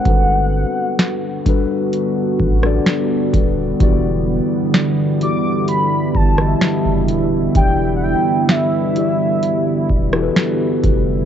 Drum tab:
HH |x---x-x-x-----x-|x---x-x-x-----x-|x---x-x-x-----x-|
SD |----o------ro---|----o------ro---|----o------ro---|
BD |o-----o---o---o-|o---------o-----|o---------o---o-|